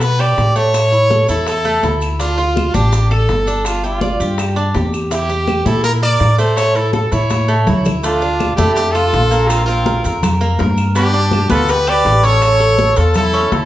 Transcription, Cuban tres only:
0.00 0.18 B3 medium
0.19 0.54 G4 medium
0.56 0.91 A3 medium
0.92 1.10 E4 medium
1.10 1.28 A4 medium
1.29 1.64 E4 medium
1.65 1.83 A3 medium
1.83 2.19 E4 medium
2.19 2.37 D4 medium
2.38 2.73 F4 medium
2.74 3.10 D4 medium
3.11 3.46 A4 medium
3.47 3.83 D4 medium
3.84 4.01 G4 medium
4.02 4.20 D5 medium
4.20 4.56 G4 medium
4.56 4.74 D4 medium
4.74 5.10 G4 medium
5.11 5.29 E4 medium
5.29 5.65 G4 medium
5.66 6.01 E4 medium
6.03 6.38 A#4 medium
6.39 6.74 A3 medium
6.75 6.93 E4 medium
6.94 7.12 A4 medium
7.12 7.48 E4 medium
7.48 7.66 A3 medium
7.67 8.02 E4 medium
8.03 8.21 A3 medium
8.22 8.57 D4 medium
8.58 8.94 A3 medium
8.95 9.30 F4 medium
9.31 9.67 A#3 medium
9.68 9.85 A#4 medium
9.86 10.03 A#4 medium
10.04 10.40 A#4 medium
10.41 10.59 A#3 medium
10.59 10.95 A#4 medium
10.95 11.13 B3 medium
11.13 11.49 D4 medium
11.50 11.86 B3 medium
11.87 12.23 G4 medium
12.23 12.59 C#4 medium
12.60 12.78 A4 medium
12.78 12.96 C#5 medium
12.97 13.32 A4 medium
13.34 13.51 C#4 medium
13.52 13.65 A4 medium

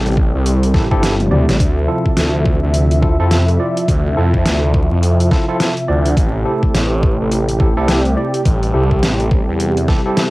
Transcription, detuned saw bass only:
0.00 0.32 A1 medium
0.35 0.73 C2 medium
0.74 0.89 A1 medium
0.92 1.30 G1 medium
1.32 1.46 D2 loud
1.49 1.58 A1 loud
1.60 1.87 D2 medium
2.17 2.60 D2 loud
2.63 3.17 D2 medium
3.20 3.58 F2 loud
3.88 4.15 D2 medium
4.17 4.44 F2 loud
4.46 4.88 D2 loud
4.91 5.29 F2 medium
5.89 6.15 D2 medium
6.17 6.44 A1 medium
6.74 7.17 A1 loud
7.20 7.74 A1 medium
7.78 8.15 C2 loud
8.46 8.72 A1 medium
8.74 9.01 C2 medium
9.03 9.46 A1 medium
9.49 9.87 E2 medium

